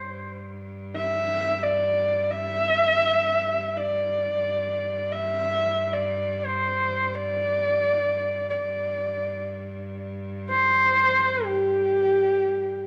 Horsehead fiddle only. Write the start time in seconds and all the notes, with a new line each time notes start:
Already playing: C5
0.96 E5
1.63 D5
2.30 E5
3.77 D5
5.12 E5
5.93 D5
6.46 C5
7.14 D5
8.50 D5
10.49 C5
11.46 G4